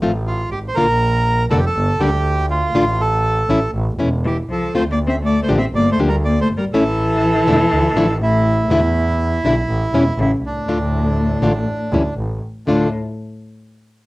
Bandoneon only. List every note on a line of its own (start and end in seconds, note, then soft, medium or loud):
0.27 0.50 F4 medium
0.51 0.59 G4 medium
0.68 0.75 C5 medium
0.75 1.46 A#4 loud
1.51 1.58 A4 medium
1.59 1.65 G4 medium
1.66 2.02 A4 loud
2.00 2.46 G4 loud
2.51 3.01 F4 medium
3.01 3.71 A4 medium
4.26 4.37 G4 medium
4.52 4.74 A4 medium
4.76 4.83 C5 loud
4.92 4.99 D5 medium
5.09 5.16 E5 medium
5.25 5.40 D5 medium
5.43 5.50 C5 medium
5.58 5.65 E5 medium
5.75 5.90 D5 loud
5.92 5.99 C5 medium
6.09 6.16 A#4 medium
6.25 6.40 D5 loud
6.41 6.48 C5 loud
6.58 6.65 A#4 medium
6.73 8.17 A4 loud
8.22 10.19 E4 loud
10.21 10.31 E4 medium
10.46 12.14 D4 medium
12.67 12.90 D4 medium